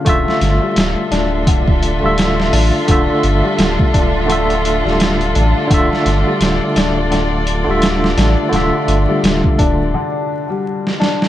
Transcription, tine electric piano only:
X:1
M:4/4
L:1/16
Q:"Swing 16ths" 1/4=85
K:Dm
V:1 name="Tine electric piano"
[A,Fe]8- [A,Fe]3 [D,A,Fe]4- [D,A,Fe] | [D,A,Fe]8 [D,A,Fe]8 | [D,A,Fe]8- [D,A,Fe]3 [D,A,Fe]4- [D,A,Fe] | [D,A,Fe]8 z8 |]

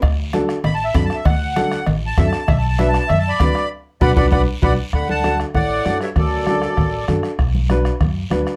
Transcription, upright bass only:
X:1
M:4/4
L:1/8
Q:1/4=196
K:D
V:1 name="Upright bass" clef=bass
D,,4 A,,,2 F,, z | D,,4 A,,,2 F,, z | B,,,4 F,,2 D,, z | z2 B,,, B,,, B,,, z B,,, z |
D,,4 A,,,2 F,, z | D,,4 A,,,2 F,, z | B,,,4 F,,2 D,, z |]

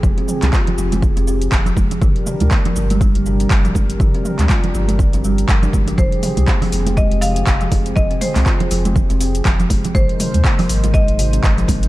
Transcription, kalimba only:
X:1
M:4/4
L:1/16
Q:"Swing 16ths" 1/4=121
K:Fdor
V:1 name="Kalimba" clef=bass
F, C z C F z F, F, z C C z F, F, z F, | F, z C, z B, F, z G, G, z C, C z F, C z | F, C z C F z F, F, z C G, z F, D D, F, | F, z C, z B, F, z A, A, z C, C z F, C z |
F, C z C F z F, F, z C C z F, F, z F, | F, z C, z B, F, z A, A, z C, C z F, C z |]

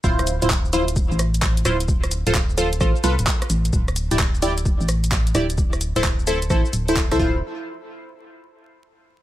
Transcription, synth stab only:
X:1
M:4/4
L:1/16
Q:"Swing 16ths" 1/4=130
K:Dm
V:1 name="Synth stab"
[EFc]3 [EFc] z2 [EFc] z6 z [EFc] z | z3 [FAc] z2 [FAc] z [FAc] z [FA=B] z4 z | z3 [EGd] z2 [EGd] z6 z [EGd] z | z3 [EAc] z2 [EAc] z [EAc] z2 [EAc] z [EAc] [EFc]2 |
z16 |]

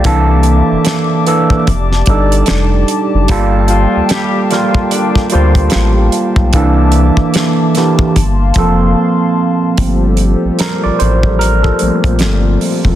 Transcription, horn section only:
X:1
M:4/4
L:1/8
Q:"Swing 16ths" 1/4=74
K:Gm
V:1 name="Horn section"
z8 | z [F,F] [G,G] [F,F] [D,D] [F,F] z2 | z8 | z8 |]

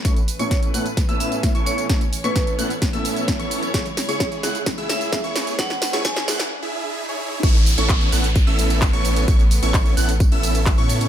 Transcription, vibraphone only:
X:1
M:4/4
L:1/16
Q:1/4=130
K:A
V:1 name="Vibraphone"
z3 c z6 e e z2 c z | z3 B B z8 z3 | z3 c z6 e e z4 | f3 z g z8 z3 |
z16 | z16 |]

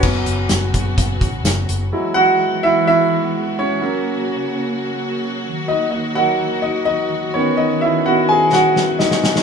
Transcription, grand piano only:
X:1
M:4/4
L:1/16
Q:1/4=127
K:F#mix
V:1 name="Grand piano"
z16 | z2 [Ff]4 [Ee]2 [Ee]6 [Cc]2- | [Cc]6 z8 z2 | [Dd]2 [Dd]2 [Ff]4 [Dd]2 [Dd]4 [Cc]2 |
[Dd]2 [Ee]2 [Ff]2 [Gg]2 [Ff]4 [Dd]3 z |]
V:2 name="Grand piano"
[F,B,C]6 z8 z2 | [F,G,E]16 | [F,A,C]2 z12 z2 | z4 [F,A,D]2 z8 [D,B,]2 |
z4 [D,B,C]2 z8 z2 |]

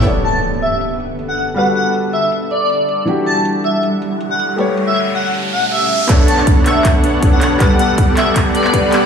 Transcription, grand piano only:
X:1
M:4/4
L:1/8
Q:1/4=159
K:Bm
V:1 name="Grand piano"
[B,Acd]8 | [G,FAB]8 | [E,DFG]8 | [A,GBc]8 |
[B,DAc]6 [B,DAc]2 | [G,ABf]6 [G,ABf]2 |]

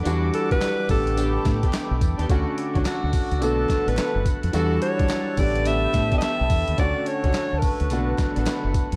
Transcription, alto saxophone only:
X:1
M:4/4
L:1/16
Q:"Swing 16ths" 1/4=107
K:Amix
V:1 name="Alto saxophone"
z2 A B3 A6 z4 | z4 F4 A3 B3 z2 | A2 c4 d2 e3- e/2 ^d/2 e4 | d2 c3- c/2 ^A/2 B4 z6 |]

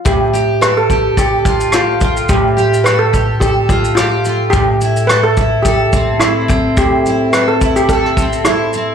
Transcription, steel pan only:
X:1
M:4/4
L:1/16
Q:"Swing 16ths" 1/4=107
K:Gmix
V:1 name="Steel pan"
G4 B A3 G4 F4 | G4 B A3 G4 F4 | G4 B A3 G4 E4 | G4 B A2 G A4 E4 |]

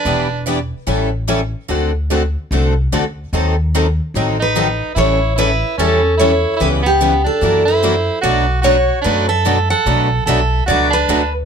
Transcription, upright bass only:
X:1
M:4/4
L:1/8
Q:"Swing" 1/4=147
K:Bm
V:1 name="Upright bass" clef=bass
E,,,4 A,,,4 | D,,4 =C,,2 D,,2 | ^D,,4 A,,,4 | A,,,4 E,,4 |
C,,4 F,,4 | B,,,4 F,,4 | B,,,2 B,,,2 C,,2 D,,2 |]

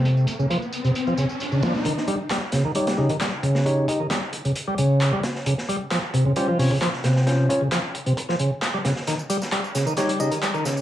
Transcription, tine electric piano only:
X:1
M:4/4
L:1/16
Q:1/4=133
K:Ebmix
V:1 name="Tine electric piano"
z16 | z8 [EGd] z [EGe] z4 z | [EGd]2 [EGe] z12 z | z8 [DFc] z [DFd] z4 z |
[DFc]2 [DFd] z12 z | z8 [EGd] z [EGe] z4 z |]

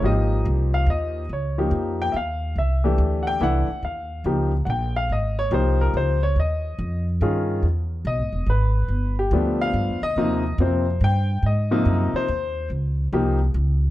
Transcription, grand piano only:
X:1
M:3/4
L:1/8
Q:"Swing" 1/4=142
K:Ab
V:1 name="Grand piano"
e2 z f e2 | d2 z g [_f=f]2 | =e2 z [_g=g] _g2 | f2 z2 [_g=g] f |
e d c B c d | e3 z3 | z2 ^d2 =B2- | =B G2 f2 e- |
e2 c2 g2 | e3 c3 | z6 |]
V:2 name="Grand piano"
[F,B,EG]4- [F,B,EG] z | z [F,B,EG]3 z2 | z [=E,=A,=DG]3 [E,A,D=E] z | z2 [F,B,EG] z3 |
z2 [F,B,EG]3 z | z4 [E,DFA]2 | z6 | z2 [F,=A,=B,=D]3 z |
[C,F,B,E] z [C,F,B,C] z3 | z [C,F,B,E]3 z2 | z2 [F,B,EG] z3 |]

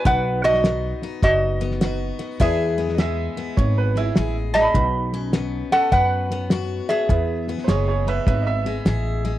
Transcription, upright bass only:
X:1
M:4/4
L:1/8
Q:"Swing" 1/4=102
K:E
V:1 name="Upright bass" clef=bass
B,,,4 F,,,4 | E,,4 G,,,2 A,,,2 | B,,,4 F,,4 | E,,2 F,,,2 G,,,2 A,,,2 |]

